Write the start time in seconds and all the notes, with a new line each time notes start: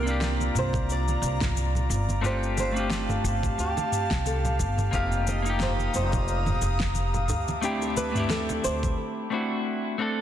Already playing: C2 F4 A#4 D5 A#5
0.03 A#3 C4 D4
0.07 F4 G4, shaker
0.20 snare, high bongo, shaker
0.40 high conga, shaker
0.55 C2 C5, mid tom, shaker
0.73 kick, high bongo, low conga, shaker
0.89 D5, shaker
1.08 high conga, shaker
1.22 C2, shaker
1.41 kick, snare, mid tom, high bongo, shaker
1.56 high conga, shaker
1.75 low conga, shaker
1.89 G1, high bongo, shaker
2.09 high conga, shaker
2.21 A3 C4 D4 F4 G4 F5 A5, mid tom, shaker
2.26 C5
2.43 shaker
2.57 C5, high bongo, high conga, shaker
2.72 A3 C4 D4
2.76 F4 G4, shaker
2.90 snare, shaker
3.09 mid tom, high bongo, high conga, shaker
3.24 G1, shaker
3.43 kick, low conga, shaker
3.58 D2 G4, shaker
3.77 high bongo, high conga, shaker
3.92 mid tom, shaker
4.11 C2, kick, snare, shaker
4.25 A4, high bongo, high conga, shaker
4.45 low conga, shaker
4.59 G1, kick, shaker
4.78 mid tom, high conga, shaker
4.91 F1 A#3 C4 D#4 F4 G4 F5 A#5 D#6, kick, high bongo, shaker
5.12 shaker
5.27 D#5, high conga, shaker
5.42 A#3 D#4, high bongo, shaker
5.48 F4 G4
5.60 C5, snare, mid tom, shaker
5.79 high conga, shaker
5.94 F1 C5, shaker
6.12 kick, high bongo, low conga, shaker
6.28 shaker
6.46 mid tom, high conga, shaker
6.61 F1, high bongo, shaker
6.80 kick, snare, shaker
6.95 high conga, shaker
7.14 low conga, shaker
7.28 D2 E5 A5 D6, mid tom, high bongo, shaker
7.48 high conga, shaker
7.61 A3 C4 D4 E4 G4, shaker
7.82 high bongo, shaker
7.97 B4, high conga, shaker
8.12 A3 C4 D4, mid tom
8.16 E4 G4, shaker
8.30 A4, snare, shaker
8.49 high bongo, high conga, shaker
8.64 D2 C5, shaker
8.83 kick, low conga, shaker
9.30 A3 C4 D4 E4 F#4
9.98 A3 C4 D4 A4